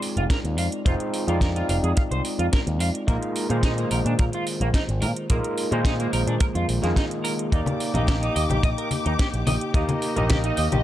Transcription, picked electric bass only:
0.17 F1
0.44 D#2
0.58 F2
0.86 F1
1.28 F2
1.69 F1
1.83 F2
2.11 C2
2.39 F2
2.67 D#2
2.80 F2
3.08 A#1
3.50 A#2
3.91 A#1
4.05 A#2
4.19 A#2
4.61 A#1
4.88 G#1
5.02 A#2
5.30 A#1
5.72 A#2
6.13 A#1
6.27 A#2
6.55 F2
6.69 A#1
6.83 F2
7.52 D#2
7.94 A#1
8.36 D#2
8.50 A#1
8.63 A#1
9.06 D#2
9.34 A#1
9.47 A#1
9.74 D#2
10.17 A#1
10.58 D#2
10.72 A#1

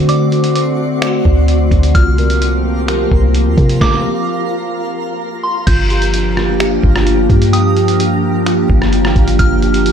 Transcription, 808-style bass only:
Already playing: D3
1.25 D2
1.71 D2
1.95 C2
3.11 C2
3.46 D#2
3.58 C3
5.67 G1
6.83 G1
7.30 G2
8.70 G1
9.16 G1
9.39 G1

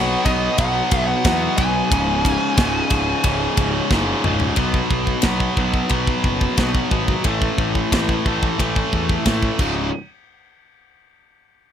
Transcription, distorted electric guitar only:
Already playing: B2 F#3 B3
0.25 B2 F#3 B3
0.59 B2 F#3 B3
1.25 B2 F#3 B3
1.59 B2 F#3 B3
1.91 C#2 G#2 C#3
2.57 C#2 G#2 C#3
2.90 C#2 G#2 C#3
3.24 C#2 G#2 C#3
3.91 C#2 G#2 C#3
4.24 C#2 G#2 C#3
4.57 B2 F#3 B3
5.24 B2 F#3 B3
5.57 B2 F#3 B3
5.89 B2 F#3 B3
6.58 B2 F#3 B3
6.91 B2 F#3 B3
7.25 A2 E3 A3
7.92 A2 E3 A3
8.27 A2 E3 A3
8.59 A2 E3 A3
9.26 A2 E3 A3
9.60 C#2 G#2 C#3

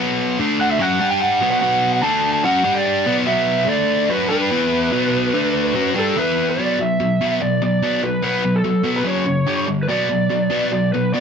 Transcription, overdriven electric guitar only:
Already playing: B2 F#3
0.00 B3
0.39 D3 A3 D4
0.79 F#3 C#4 F#4
1.00 G3 D4 G4
1.41 B2 F#3 B3
1.62 B2 F#3 B3
2.03 D3 A3 D4
2.44 F#3 C#4 F#4
2.64 G3 D4 G4
3.06 B2 F#3 B3
3.27 B2 F#3 B3
3.68 D3 A3 D4
4.10 F#3 C#4 F#4
4.30 G3 D4 G4
4.51 E3 B3 E4
4.92 B2 F#3 B3
5.34 D3 A3 D4
5.75 F#3 C#4 F#4
5.95 G3 D4 G4
6.16 E3 B3 E4
6.59 B2 F#3 B3
6.79 B2 F#3
7.00 B2 F#3
7.21 B2 F#3 B3
7.41 B2 F#3
7.62 B2 F#3
7.82 B2 F#3 B3
8.03 B2 F#3
8.22 B2 F#3 B3
8.44 B2 F#3
8.64 B2 F#3
8.84 B2 F#3 B3
9.04 F#2 C#3 F#3
9.26 F#2 C#3
9.47 G2 D3 G3
9.68 G2 D3
9.89 B2 F#3 B3
10.10 B2 F#3
10.30 B2 F#3
10.50 B2 F#3 B3
10.71 B2 F#3
10.94 B2 F#3
11.14 B2 F#3 B3

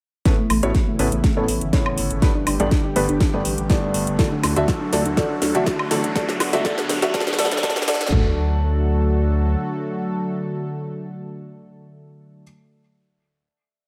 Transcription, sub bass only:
0.50 A1
0.63 A1
0.99 A1
1.12 A1
1.48 A1
1.61 G1
1.98 G1
2.11 G1
2.47 G1
2.60 A1
2.96 G1
3.09 G1
3.45 A1
3.58 A1
3.94 G1
4.07 G1
4.44 D2
4.56 D2
4.93 D2
5.06 D2
5.42 D2
5.55 A1
5.91 A1
6.04 A1
6.40 B1
6.53 C#2
6.89 B1
7.02 B1
7.39 B1
7.52 B1
7.88 B1
8.01 B1
8.12 D2

